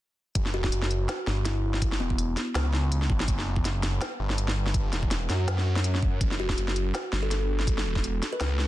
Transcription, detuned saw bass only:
0.35 F#1
0.72 F#1
1.27 G1
2.00 E1
2.55 C#2
3.10 A1
3.28 F#1
3.65 F#1
4.20 G1
4.93 E1
5.30 F#2
6.21 F#1
6.58 F#1
7.13 G1
7.86 E1
8.41 C#2

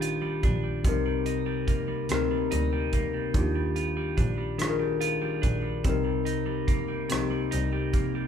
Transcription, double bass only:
Already playing: A#1
0.44 A#1
0.85 C2
2.11 D2
2.52 D2
3.35 D#2
4.18 A#1
5.44 A#1
5.85 C2
7.11 C2
7.53 C2

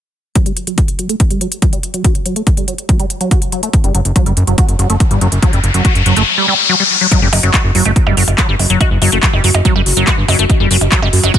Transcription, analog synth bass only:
3.84 F#1
3.95 F#1
4.05 F#1
4.26 F#1
4.37 F#1
4.47 F#1
4.68 F#1
4.79 F#1
4.90 F#1
5.11 G1
5.21 F#1
5.32 F#1
5.53 F#1
5.64 F#1
5.74 F#1
5.95 F#1
6.06 F#1
6.16 F#1
7.22 F#1
7.33 F#1
7.43 F#1
7.64 F#1
7.75 F#1
7.85 F#1
8.07 F#1
8.17 F#1
8.28 F#1
8.49 G1
8.59 F#1
8.70 F#1
8.91 F#1
9.02 F#1
9.12 F#1
9.33 F#1
9.44 F#1
9.54 F#1
9.76 F#1
9.86 F#1
9.97 F#1
10.18 G1
10.28 F#1
10.39 F#1
10.60 F#1
10.71 F#1
10.81 F#1
11.02 F#1
11.13 F#1
11.23 F#1

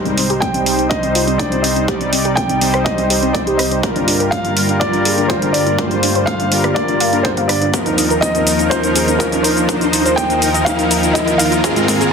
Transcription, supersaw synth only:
Already playing: G3 D#4 C5
0.66 G3 D#4 C5
0.91 G3 D#4 C5
1.88 G3 D#4 D5
2.61 G3 D#4 C5
3.83 G3 F4 A#4
4.57 G3 F4 A#4
4.81 G3 F4 A#4
5.79 G3 F4 C5
6.52 G3 F4 A#4
7.13 G3 F4 A#4
7.74 F3 D#4 A#4
8.47 F3 D#4 A#4
8.71 F3 D#4 A#4
9.69 F3 D#4 C5
10.42 F3 D#4 A#4
11.64 G#3 C4 A#4

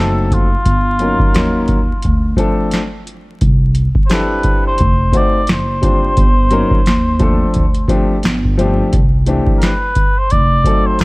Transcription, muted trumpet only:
0.00 A4
0.33 F4
4.06 C5
4.12 B4
4.67 C5
5.17 D5
5.51 C5
9.58 A#4
9.64 B4
10.18 C5
10.31 D5
10.86 C5
11.01 A4

